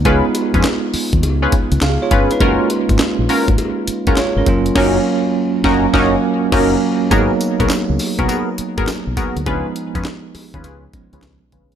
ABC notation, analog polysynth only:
X:1
M:4/4
L:1/16
Q:"Swing 16ths" 1/4=102
K:G#dor
V:1 name="Analog polysynth"
[CEGB] z2 [CEGB] z4 z [CEGB] z4 [CEGB] z | [CEFA]2 z4 [CEFA] z4 [CEFA] z4 | [CDFA]2 z4 [CDFA]2 [CDFA]2 z2 [CDFA]2 z2 | [B,FGA] z2 [B,FGA] z3 [B,FGA] [B,FGA] z2 [B,FGA] z2 [B,FGA] z |
[CEGB] z2 [CEGB] z3 [CEGB] [CEGB] z2 [CEGB] z2 [CEGB] z |]